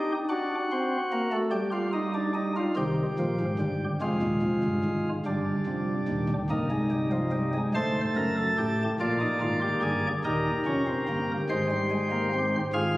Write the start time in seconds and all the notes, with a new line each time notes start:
Already playing: D#4 G4
0.29 D4 F#4
0.72 C4
1.12 A#3
1.32 A3
1.51 G3 G4
1.72 F4
1.93 D#4
2.14 D4
2.34 D#4
2.56 F4
2.76 C2 C3 D#3 G4
3.19 A#1 A#2 F3
3.40 G#1 G#2
3.59 G1 G2 G3
4.01 F1 F2 G#3 F4
4.23 D#1 D#2
4.42 F1 F2
4.64 G1 G2
4.84 G#1 G#2
5.26 G1 G2 G3 D4
5.67 F1 F2
6.08 D#1 D#2
6.29 D1 D2
6.50 C1 C2 A#3 D#4
6.71 G#3
6.91 G3
7.12 F3
7.32 G3
7.54 G#3
7.74 D1 D2 A3 C5 A5
8.16 F#1 F#2 A#4
8.37 A4
8.58 A1 A2 G4
9.00 A#1 A#2 A#3 F4 D5
9.21 D#4
9.41 G#1 G#2 F4
9.62 G4
9.82 G1 G2 G#4
10.24 D#1 D#2 D#4 G4 A#4
10.65 F1 F2 C#4
10.87 C4
11.08 G1 G2 A#3
11.49 G#1 G#2 G#3 C5
11.71 G3
11.90 G#3
12.11 A#3
12.33 C4
12.73 G#1 G#2 F4 G#4 F5